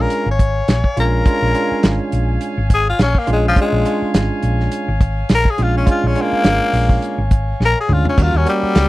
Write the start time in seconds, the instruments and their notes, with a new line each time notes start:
Already playing: tine electric piano G#3 C#4 D4 F4, horn section C#5 F5 G#5
0.01 tenor saxophone A#4
0.10 closed hi-hat
0.26 fingered electric bass G#1
0.31 tenor saxophone C#5
0.39 kick, closed hi-hat
0.68 fingered electric bass A#1, snare, closed hi-hat
0.84 kick
0.97 fingered electric bass A#1, tine electric piano G#3 C#4 D4 F4, tenor saxophone A#4, closed hi-hat
1.25 tine electric piano G#3 C#4 D4 F4, kick, closed hi-hat
1.42 fingered electric bass A#1
1.54 tine electric piano G#3 C#4 D4 F4, closed hi-hat
1.71 muted fingered electric bass stroke
1.83 fingered electric bass G#1, snare, closed hi-hat
2.12 fingered electric bass A#1, closed hi-hat
2.41 closed hi-hat
2.58 fingered electric bass G#1
2.70 kick, closed hi-hat
2.74 tenor saxophone G#4
2.90 tenor saxophone F4
2.99 fingered electric bass A#1, tenor saxophone C#4, snare, closed hi-hat
3.15 kick
3.19 tenor saxophone A#3
3.27 fingered electric bass A#1, tine electric piano G#3 C#4 D4 F4, closed hi-hat
3.33 tenor saxophone G#3
3.48 tenor saxophone F3
3.56 tine electric piano G#3 C#4 D4 F4, kick, closed hi-hat
3.62 tenor saxophone G#3
3.72 fingered electric bass A#1
3.85 tine electric piano G#3 C#4 D4 F4, closed hi-hat
4.02 muted fingered electric bass stroke
4.14 fingered electric bass G#1, snare, closed hi-hat
4.43 fingered electric bass A#1, closed hi-hat
4.60 snare
4.72 closed hi-hat
4.88 fingered electric bass G#1
5.01 kick, closed hi-hat
5.29 fingered electric bass A#1, snare, closed hi-hat
5.35 tenor saxophone A#4
5.45 kick
5.50 tenor saxophone G#4
5.58 fingered electric bass A#1, tine electric piano G#3 C#4 D4 F4, closed hi-hat
5.63 tenor saxophone F4
5.77 tenor saxophone C#4
5.86 tine electric piano G#3 C#4 D4 F4, kick, closed hi-hat
5.91 tenor saxophone F4
6.04 fingered electric bass A#1, tenor saxophone C#4
6.15 tine electric piano G#3 C#4 D4 F4, closed hi-hat
6.21 tenor saxophone A#3
6.32 muted fingered electric bass stroke
6.44 fingered electric bass G#1, snare, closed hi-hat
6.73 fingered electric bass A#1, snare, open hi-hat
6.89 kick
7.02 closed hi-hat
7.18 fingered electric bass G#1
7.31 kick, closed hi-hat
7.60 fingered electric bass A#1, snare
7.65 tenor saxophone A#4
7.80 tenor saxophone G#4
7.89 fingered electric bass D2, tine electric piano G#3 C#4 D4 F4, mid tom
7.93 tenor saxophone F4
8.05 tenor saxophone C#4, floor tom
8.17 fingered electric bass D#2, tine electric piano G3 A#3 C#4 F#4, horn section F#5 A#5, kick, closed hi-hat, splash
8.22 tenor saxophone F4
8.34 fingered electric bass D#2, tenor saxophone C#4
8.45 tine electric piano G3 A#3 C#4 F#4, tenor saxophone G3, closed hi-hat
8.63 muted fingered electric bass stroke
8.75 fingered electric bass C#2, snare, closed hi-hat